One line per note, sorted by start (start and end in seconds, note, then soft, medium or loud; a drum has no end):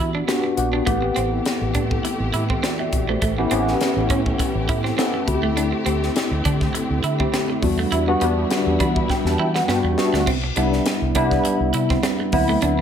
0.00 0.21 E3 medium
0.00 0.28 B3 medium
0.00 0.28 D4 medium
0.00 0.28 F#4 medium
0.00 0.29 G4 medium
0.15 0.23 D4 medium
0.28 0.38 B3 medium
0.28 0.53 B3 medium
0.28 0.53 D4 medium
0.28 0.53 F#4 medium
0.28 0.53 G4 medium
0.28 snare loud
0.28 closed hi-hat medium
0.44 muted clean electric guitar stroke soft
0.57 0.79 A#1 medium
0.57 0.82 B3 medium
0.57 0.82 D4 medium
0.57 0.82 F#4 medium
0.57 0.83 G4 medium
0.57 closed hi-hat medium
0.73 0.82 D4 medium
0.86 1.09 A1 medium
0.86 3.20 C3 medium
0.86 5.24 E3 medium
0.86 0.96 A3 medium
0.86 3.20 A3 medium
0.86 1.83 B3 medium
0.86 1.84 C4 medium
0.86 1.84 E4 medium
0.86 1.84 G4 medium
0.86 3.20 G4 medium
0.86 kick medium
0.86 closed hi-hat medium
1.02 muted clean electric guitar stroke soft
1.16 1.39 A1 medium
1.16 1.26 C4 medium
1.16 closed hi-hat medium
1.46 snare loud
1.46 closed hi-hat medium
1.61 1.72 A1 medium
1.75 1.97 A2 medium
1.75 1.85 D4 medium
1.75 kick medium
1.75 closed hi-hat medium
1.91 kick medium
2.05 muted clean electric guitar stroke soft
2.05 closed hi-hat medium
2.20 2.30 A1 medium
2.33 2.56 A2 medium
2.33 2.43 E4 medium
2.33 closed hi-hat medium
2.50 2.58 C4 medium
2.50 kick medium
2.63 2.73 C4 medium
2.63 2.79 F#4 soft
2.63 2.78 D5 medium
2.63 snare loud
2.63 closed hi-hat medium
2.79 3.07 G4 medium
2.79 3.07 E5 medium
2.79 muted clean electric guitar stroke soft
2.92 3.14 A#1 medium
2.92 kick medium
2.92 closed hi-hat medium
3.09 3.17 A3 medium
3.09 3.37 E4 soft
3.09 3.37 C5 medium
3.22 3.44 A1 medium
3.22 3.32 A3 medium
3.22 7.59 A3 medium
3.22 5.26 C#4 medium
3.22 7.59 G4 medium
3.22 kick medium
3.22 closed hi-hat medium
3.38 3.49 B3 medium
3.38 3.49 C#4 medium
3.38 3.49 E4 medium
3.38 3.49 G4 medium
3.38 muted clean electric guitar stroke soft
3.51 3.73 A1 medium
3.51 4.48 B3 medium
3.51 3.61 C4 medium
3.51 4.48 C#4 medium
3.51 4.48 E4 medium
3.51 4.49 G4 medium
3.51 closed hi-hat medium
3.68 snare soft
3.81 snare loud
3.81 closed hi-hat medium
3.96 4.10 A1 medium
4.10 4.32 A2 medium
4.10 4.20 C#4 medium
4.10 kick medium
4.10 closed hi-hat medium
4.26 kick medium
4.39 muted clean electric guitar stroke soft
4.39 kick medium
4.39 closed hi-hat medium
4.55 4.69 A1 medium
4.69 4.91 A2 medium
4.69 4.79 E4 medium
4.69 kick medium
4.69 closed hi-hat medium
4.84 4.93 C4 medium
4.84 snare soft
4.98 5.22 B3 medium
4.98 5.08 C4 medium
4.98 5.23 C#4 medium
4.98 5.23 E4 medium
4.98 5.23 A4 medium
4.98 snare loud
4.98 closed hi-hat medium
5.14 muted clean electric guitar stroke soft
5.27 5.71 D2 medium
5.27 10.23 D3 medium
5.27 6.24 A3 medium
5.27 6.24 C4 medium
5.27 7.60 C4 medium
5.27 6.24 E4 medium
5.27 5.35 F#4 medium
5.27 kick loud
5.27 closed hi-hat medium
5.34 6.28 G4 medium
5.43 5.52 A3 medium
5.57 5.67 D4 medium
5.57 closed hi-hat medium
5.72 muted clean electric guitar stroke soft
5.86 6.08 D2 medium
5.86 5.96 C4 medium
5.86 closed hi-hat medium
6.03 snare soft
6.16 snare loud
6.16 closed hi-hat medium
6.31 6.41 D2 medium
6.45 6.67 D3 medium
6.45 6.55 D4 medium
6.45 kick medium
6.45 closed hi-hat medium
6.61 kick medium
6.61 snare soft
6.75 muted clean electric guitar stroke soft
6.75 closed hi-hat medium
6.90 7.00 D2 medium
7.03 7.26 D3 medium
7.03 7.14 E4 medium
7.03 closed hi-hat medium
7.19 7.55 A3 medium
7.19 7.55 C4 medium
7.19 7.28 C4 medium
7.19 7.55 E4 medium
7.19 7.55 G4 medium
7.19 kick medium
7.34 7.43 C4 medium
7.34 snare loud
7.34 closed hi-hat medium
7.50 muted clean electric guitar stroke soft
7.61 7.84 E2 medium
7.61 7.99 G3 medium
7.61 10.25 G3 medium
7.61 7.99 B3 medium
7.61 10.25 B3 medium
7.61 7.99 D4 medium
7.61 10.25 E4 medium
7.61 7.99 F#4 medium
7.61 kick medium
7.61 open hi-hat medium
7.79 7.87 A3 medium
7.91 8.14 E2 medium
7.91 8.02 E4 medium
7.91 closed hi-hat medium
8.07 8.19 G3 medium
8.07 8.19 B3 medium
8.07 8.19 D4 medium
8.07 8.19 F#4 medium
8.07 muted clean electric guitar stroke soft
8.21 8.43 E2 medium
8.21 9.18 G3 medium
8.21 9.18 B3 medium
8.21 8.31 B3 medium
8.21 9.18 D4 medium
8.21 9.19 G4 medium
8.21 closed hi-hat medium
8.51 snare loud
8.51 closed hi-hat medium
8.66 8.77 E2 medium
8.80 9.02 E3 medium
8.80 8.90 D4 medium
8.80 9.07 B5 medium
8.80 kick medium
8.80 closed hi-hat medium
8.96 kick medium
9.10 9.25 G5 medium
9.10 muted clean electric guitar stroke soft
9.10 kick medium
9.10 snare soft
9.24 9.35 E2 loud
9.24 9.39 A5 medium
9.24 snare soft
9.39 9.61 E3 medium
9.39 9.49 E4 medium
9.39 9.54 G5 medium
9.55 9.64 B3 medium
9.55 9.67 F#5 medium
9.55 snare medium
9.68 9.80 G2 medium
9.68 9.93 G3 medium
9.68 9.93 B3 medium
9.68 9.78 B3 medium
9.68 9.94 D4 medium
9.68 9.94 F#4 medium
9.68 9.96 G5 medium
9.68 snare medium
9.84 9.94 E2 medium
9.84 muted clean electric guitar stroke soft
9.98 10.22 G3 medium
9.98 10.22 B3 medium
9.98 10.23 D4 medium
9.98 10.23 F#4 medium
9.98 10.25 E5 medium
9.98 snare medium
10.13 10.24 D2 medium
10.13 10.22 A3 medium
10.13 snare medium
10.27 10.49 C2 loud
10.27 10.37 C4 medium
10.27 kick medium
10.27 crash medium
10.44 muted clean electric guitar stroke soft
10.56 10.79 C2 loud
10.56 11.06 G3 medium
10.56 11.06 B3 medium
10.56 11.06 D4 medium
10.56 10.67 D4 medium
10.56 11.06 E4 medium
10.56 closed hi-hat medium
10.73 snare soft
10.86 snare loud
10.86 closed hi-hat medium
11.02 11.12 C2 loud
11.15 11.37 C3 medium
11.15 12.13 G3 medium
11.15 12.13 B3 medium
11.15 11.26 D4 medium
11.15 12.13 D4 medium
11.15 12.13 E4 loud
11.15 kick medium
11.15 closed hi-hat medium
11.31 kick medium
11.31 snare soft
11.45 muted clean electric guitar stroke soft
11.45 closed hi-hat medium
11.60 11.71 C2 medium
11.74 11.96 C3 loud
11.74 11.84 E4 medium
11.74 closed hi-hat medium
11.90 11.99 C4 medium
11.90 kick medium
11.90 snare soft
12.03 12.13 C4 medium
12.03 snare loud
12.03 closed hi-hat medium
12.20 muted clean electric guitar stroke soft
12.32 12.55 D2 medium
12.32 12.81 F#3 medium
12.32 12.81 B3 medium
12.32 12.81 C4 medium
12.32 12.81 E4 loud
12.32 kick loud
12.32 open hi-hat medium
12.49 12.58 A3 medium
12.62 12.81 D2 loud
12.62 12.72 D4 medium
12.62 closed hi-hat medium